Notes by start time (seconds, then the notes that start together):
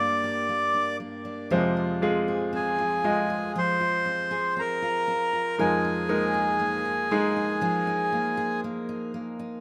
Already playing: G2 D3 A#3 D4 G4 C5 D5 D6
0.00 A#3
0.24 G4
0.49 A#3
0.74 D4
1.00 A#3
1.25 D4
1.50 F2 C3 F3 G#3 F4 G#4 C5
1.77 F4
2.02 G#3 C4 F4 G#4
2.28 G#4
2.53 C4 G#4 G#5
2.79 F4
3.04 G#3 C4 F4 D#5
3.30 F4
3.55 F3 G#4 C5 C6
3.80 F4
4.06 C4
4.31 G#4
4.57 C4 A#4 A#5
4.82 F4
5.08 C4
5.33 F4
5.58 F2 F3 G#3 D#4 G#4 A#4 G#5
5.85 D#4
6.09 G#3 A#3 D#4 A#4
6.34 G#4
6.60 A#3
6.85 D#4
7.11 G#3 A#3 D#4 G#4
7.36 D#4
7.61 F3 G#4
7.87 D#4
8.12 A#3
8.37 G#4
8.64 A#3
8.89 D#4
9.14 A#3
9.39 D#4